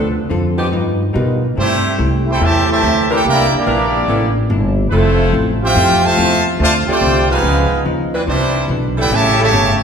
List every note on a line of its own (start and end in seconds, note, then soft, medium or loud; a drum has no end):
0.00 0.30 D2 medium
0.00 0.19 D3 medium
0.00 0.19 C4 medium
0.00 0.20 F4 medium
0.00 0.20 A4 medium
0.30 0.72 F2 loud
0.30 0.60 D3 medium
0.30 0.60 C4 medium
0.30 0.61 F4 medium
0.30 0.61 A4 medium
0.58 0.68 F3 loud
0.58 0.68 B3 medium
0.58 0.68 D#4 medium
0.58 0.68 G4 loud
0.72 1.14 G2 medium
0.72 1.02 G3 medium
0.72 1.03 D#4 medium
0.72 1.03 F4 medium
0.72 1.04 B4 medium
1.13 1.56 B2 loud
1.13 1.44 G3 medium
1.13 1.40 G3 medium
1.13 1.41 B3 medium
1.13 1.44 D#4 medium
1.13 1.41 D#4 medium
1.13 1.45 F4 medium
1.13 1.41 F4 medium
1.13 1.41 A#4 medium
1.13 1.45 B4 medium
1.55 1.98 G2 medium
1.55 1.86 C3 soft
1.55 1.96 G3 medium
1.55 1.87 A3 soft
1.55 1.96 A3 medium
1.55 1.97 A3 medium
1.55 1.96 C4 medium
1.55 1.87 E4 medium
1.55 1.97 E4 medium
1.55 1.97 G4 medium
1.55 1.87 G4 medium
1.55 1.97 C5 loud
1.98 2.39 C2 medium
1.98 2.28 C3 medium
1.98 2.28 A3 medium
1.98 2.29 E4 medium
1.98 2.29 G4 medium
2.26 2.38 A3 medium
2.26 2.39 E4 medium
2.26 2.39 G4 medium
2.31 2.42 E4 medium
2.31 2.42 A4 medium
2.31 2.42 C5 medium
2.31 2.42 G5 loud
2.39 2.81 E2 medium
2.39 2.67 A2 medium
2.39 2.70 C3 medium
2.39 2.66 E3 medium
2.39 2.67 A3 loud
2.39 2.71 A3 soft
2.39 2.71 E4 medium
2.39 2.71 G4 medium
2.44 2.71 G4 loud
2.44 2.71 C5 medium
2.44 2.71 E5 loud
2.44 2.71 A5 loud
2.67 3.07 A2 loud
2.67 3.07 E3 loud
2.67 3.07 A3 loud
2.72 3.09 G4 loud
2.72 3.10 C5 loud
2.72 3.10 E5 loud
2.72 3.09 A5 loud
2.82 3.23 D2 medium
2.82 3.12 C3 medium
2.82 3.12 A3 medium
2.82 3.12 E4 medium
2.82 3.13 G4 medium
3.10 3.20 E3 loud
3.10 3.24 A3 medium
3.10 3.20 C4 loud
3.10 3.20 D4 loud
3.10 3.24 E4 medium
3.10 3.24 G4 medium
3.10 3.20 A#4 loud
3.14 3.25 E4 medium
3.14 3.26 A4 medium
3.14 3.25 C5 medium
3.14 3.25 G5 loud
3.24 3.51 C2 medium
3.24 3.55 C3 soft
3.24 3.51 A#3 medium
3.24 3.55 A#3 soft
3.24 3.56 D4 soft
3.24 3.51 E4 medium
3.24 3.56 E4 medium
3.24 3.51 G4 medium
3.30 3.54 E4 loud
3.30 3.54 A#4 loud
3.30 3.54 D5 medium
3.30 3.54 G5 loud
3.52 4.36 G3 medium
3.52 4.36 A#3 medium
3.52 4.37 D4 medium
3.52 muted upright bass stroke soft
3.57 4.39 A#3 medium
3.57 4.39 E4 medium
3.57 4.39 G4 medium
3.57 4.39 D5 medium
3.66 4.07 A#1 loud
3.66 3.96 C3 medium
3.66 3.86 E3 loud
3.66 3.96 A#3 medium
3.66 3.86 C4 medium
3.66 3.85 D4 medium
3.66 3.97 D4 medium
3.66 3.97 E4 medium
3.66 3.86 A#4 loud
4.08 4.49 A1 medium
4.08 4.38 C3 medium
4.08 4.28 E3 medium
4.08 4.38 A#3 medium
4.08 4.28 C4 medium
4.08 4.39 D4 medium
4.08 4.28 D4 medium
4.08 4.39 E4 medium
4.08 4.28 A4 medium
4.50 4.90 G1 loud
4.50 4.80 C3 medium
4.50 4.80 A#3 medium
4.50 4.80 D4 medium
4.50 4.81 E4 medium
4.89 5.32 F1 medium
4.89 5.21 F3 medium
4.89 5.57 F3 loud
4.89 5.34 F3 medium
4.89 5.22 A3 medium
4.89 5.34 A3 medium
4.89 5.34 C4 medium
4.89 5.57 A4 loud
4.89 4.93 B4 medium
4.93 5.36 A3 medium
4.93 5.22 C4 medium
4.93 5.57 C4 medium
4.93 5.23 E4 medium
4.93 5.36 E4 medium
4.93 5.36 F4 medium
4.93 5.36 C5 loud
5.31 5.74 A1 loud
5.31 5.62 F3 medium
5.31 5.63 A3 medium
5.31 5.63 C4 medium
5.31 5.63 E4 medium
5.61 6.00 C4 loud
5.61 6.00 F4 medium
5.61 6.01 G4 medium
5.65 6.03 F4 loud
5.65 6.03 C5 loud
5.65 6.03 E5 loud
5.65 6.03 G5 loud
5.74 6.16 F2 loud
5.74 6.04 F3 medium
5.74 6.05 A3 medium
5.74 6.06 C4 medium
5.74 6.06 E4 medium
6.04 6.46 C3 loud
6.04 6.46 F3 loud
6.04 6.46 A3 loud
6.04 6.47 F4 loud
6.04 6.47 C5 loud
6.04 6.47 E5 loud
6.04 6.47 A5 loud
6.17 6.58 E2 loud
6.17 6.47 F3 medium
6.17 6.47 A3 medium
6.17 6.47 C4 medium
6.17 6.48 E4 medium
6.59 6.86 D2 medium
6.59 6.72 C3 medium
6.59 6.89 D3 medium
6.59 6.72 F3 medium
6.59 6.89 A3 soft
6.59 6.73 A3 medium
6.59 6.90 C4 soft
6.59 6.90 F4 medium
6.59 6.74 F4 loud
6.59 6.74 C5 loud
6.59 6.74 D5 medium
6.59 6.74 A5 loud
6.86 6.98 F3 medium
6.86 7.26 A3 medium
6.86 7.26 C4 loud
6.86 6.97 C4 medium
6.86 6.97 D4 medium
6.86 7.27 F4 medium
6.86 7.26 G4 loud
6.86 6.97 A4 medium
6.86 7.28 C5 loud
6.86 7.28 D5 medium
6.86 7.27 G5 loud
6.86 muted upright bass stroke soft
7.01 7.42 C2 loud
7.01 7.31 D3 medium
7.01 7.31 A3 medium
7.01 7.31 C4 medium
7.01 7.32 F4 medium
7.30 7.83 F3 medium
7.30 7.81 G#3 medium
7.30 7.81 B3 medium
7.30 7.83 C#4 medium
7.30 7.81 D#4 medium
7.30 7.83 D#4 medium
7.30 7.81 F4 medium
7.30 7.81 G#4 medium
7.30 7.82 B4 medium
7.30 7.83 B4 loud
7.30 7.81 F5 loud
7.42 7.69 C#2 medium
7.42 7.72 C#3 soft
7.42 7.73 F3 medium
7.42 7.73 B3 medium
7.42 7.74 D#4 medium
7.85 8.26 D#2 medium
7.85 8.14 C#3 medium
7.85 8.15 F3 medium
7.85 8.15 B3 medium
7.85 8.15 D#4 medium
8.14 8.23 E3 loud
8.14 8.23 C4 loud
8.14 8.23 D4 medium
8.14 8.23 B4 loud
8.26 8.67 C2 medium
8.26 8.56 C3 medium
8.26 8.57 E3 soft
8.26 8.67 E3 medium
8.26 8.66 G3 medium
8.26 8.67 G3 medium
8.26 8.57 B3 medium
8.26 8.66 C4 medium
8.26 8.57 D4 medium
8.26 8.67 D4 medium
8.26 8.67 E4 medium
8.26 8.66 C5 loud
8.68 9.09 B1 medium
8.68 8.98 C3 medium
8.68 8.99 E3 medium
8.68 8.99 B3 medium
8.68 9.00 D4 medium
8.98 9.36 G3 loud
8.98 9.11 B3 medium
8.98 9.36 C#4 medium
8.98 9.36 E4 loud
8.98 9.10 E4 medium
8.98 9.12 E4 medium
8.98 9.10 G4 medium
8.98 9.36 A4 loud
8.98 9.11 B4 medium
8.98 9.12 D5 medium
8.98 9.12 G5 loud
9.10 9.51 A1 medium
9.10 9.40 A2 soft
9.10 9.39 C#3 loud
9.10 9.39 E3 loud
9.10 9.41 G3 medium
9.10 9.39 A3 loud
9.10 9.41 C#4 medium
9.10 9.42 E4 medium
9.15 9.41 G4 loud
9.15 9.41 C#5 loud
9.15 9.41 E5 loud
9.15 9.41 A5 loud
9.38 9.78 C#3 loud
9.38 9.79 E3 loud
9.38 9.48 G3 loud
9.38 9.78 A3 loud
9.38 9.48 C#4 medium
9.38 9.48 E4 loud
9.38 9.47 A4 loud
9.43 9.80 G4 loud
9.43 9.80 C#5 loud
9.43 9.80 E5 loud
9.43 9.80 A5 loud
9.52 9.78 G1 medium
9.52 9.82 A2 medium
9.52 9.82 G3 medium
9.52 9.82 C#4 medium
9.52 9.83 E4 medium